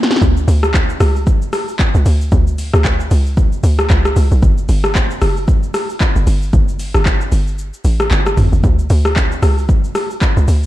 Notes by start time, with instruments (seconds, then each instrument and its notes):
0.03 snare
0.11 snare, shaker
0.16 snare
0.22 log drum bass D2, kick, shaker
0.37 shaker
0.48 log drum bass D2, open hi-hat, shaker
0.63 cross-stick, shaker
0.74 kick, clap, shaker
0.90 shaker
1.00 log drum bass C#2, cross-stick, open hi-hat, shaker
1.16 shaker
1.27 kick, shaker
1.42 shaker
1.53 cross-stick, open hi-hat, shaker
1.68 shaker
1.79 kick, clap, shaker
1.95 log drum bass C#2, shaker
2.06 log drum bass D2, open hi-hat, shaker
2.21 shaker
2.32 log drum bass D2, kick, shaker
2.47 shaker
2.58 open hi-hat, shaker
2.74 log drum bass D2, cross-stick, shaker
2.85 kick, clap, shaker
3.00 shaker
3.11 log drum bass C#2, open hi-hat, shaker
3.26 shaker
3.37 kick, shaker
3.52 shaker
3.63 log drum bass D2, open hi-hat, shaker
3.79 cross-stick, shaker
3.90 log drum bass C#2, kick, clap, shaker
4.05 cross-stick, shaker
4.16 log drum bass C#2, open hi-hat, shaker
4.32 log drum bass B1, shaker
4.42 log drum bass G1, kick, shaker
4.58 shaker
4.69 log drum bass G1, open hi-hat, shaker
4.84 cross-stick, shaker
4.95 kick, clap, shaker
5.11 shaker
5.22 log drum bass F#1, cross-stick, open hi-hat, shaker
5.37 shaker
5.48 kick, shaker
5.63 shaker
5.74 cross-stick, open hi-hat, shaker
5.90 shaker
6.00 kick, clap, shaker
6.16 log drum bass F#1, shaker
6.27 log drum bass G1, open hi-hat, shaker
6.42 shaker
6.53 log drum bass G1, kick, shaker
6.68 shaker
6.79 open hi-hat, shaker
6.94 log drum bass G1, cross-stick, shaker
7.06 kick, clap, shaker
7.21 shaker
7.32 log drum bass G1, open hi-hat, shaker
7.47 shaker
7.58 shaker
7.74 shaker
7.85 log drum bass A1, open hi-hat, shaker
8.00 cross-stick, shaker
8.11 log drum bass G1, clap, shaker
8.26 cross-stick, shaker
8.37 log drum bass G1, mid tom, open hi-hat, shaker
8.53 log drum bass F#1, shaker
8.64 log drum bass D2, kick, shaker
8.79 shaker
8.90 log drum bass D2, open hi-hat, shaker
9.05 cross-stick, shaker
9.16 kick, clap, shaker
9.32 shaker
9.43 log drum bass C#2, cross-stick, open hi-hat, shaker
9.58 shaker
9.69 kick, shaker
9.84 shaker
9.95 cross-stick, open hi-hat, shaker
10.11 shaker
10.21 kick, clap, shaker
10.37 log drum bass C#2, shaker
10.48 log drum bass D2, open hi-hat, shaker